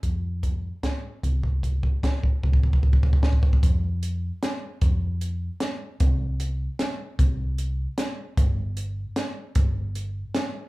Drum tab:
HH |x---x---x---|x---x---x---|------------|x---x---x---|
SD |--------o---|--------o---|--------o---|--------o---|
BD |o---o---o---|o-o-o-o-o-o-|oooooooooooo|o-----------|

HH |x---x---x---|x---x---x---|x---x---x---|x---x---x---|
SD |--------o---|--------o---|--------o---|--------o---|
BD |o-----------|o-----------|o-----------|o-----------|

HH |x---x---x---|
SD |--------o---|
BD |o-----------|